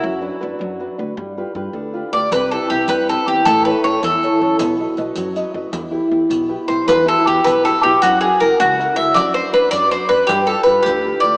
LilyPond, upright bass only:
\new Staff \with { instrumentName = "Upright bass" } { \clef bass \time 6/8 \key e \minor \tempo 4. = 106 fis,4 fis,8 fis,4 d,8 | g,4 g,8 d,4 d,8 | c,4 c,8 g,4 e,8 | a,,4 a,,8 e,4 fis,8 |
b,,4 b,,8 fis,4 fis,8 | e,4 e,8 b,,4 b,,8 | e,4 e,8 b,,4 b,,8 | fis,4 fis,8 cis,4 cis,8 |
fis,4 fis,8 fis,4 fis,8 | g,4 g,8 d,4 d,8 | }